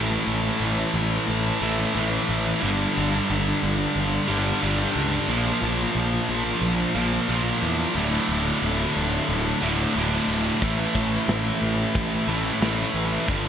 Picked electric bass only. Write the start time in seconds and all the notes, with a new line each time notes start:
Already playing: A1
0.27 A1
0.60 A1
0.94 A1
1.28 A1
1.62 A1
1.96 A1
2.29 A1
2.63 G1
2.97 G1
3.30 G1
3.63 G1
3.96 G1
4.30 G1
4.63 G1
4.96 C#2
5.28 A#1
5.62 A#1
5.95 A#1
6.29 A#1
6.62 A#1
6.95 A#1
7.29 A#1
7.63 E2
7.95 D1
8.29 D1
8.62 D1
8.97 D1
9.29 D1
9.63 D1
9.96 D1
10.28 D1
10.62 A1
10.95 A1
11.28 A1
11.62 A1
11.95 A1
12.27 A1
12.61 A1
12.94 A1
13.28 G1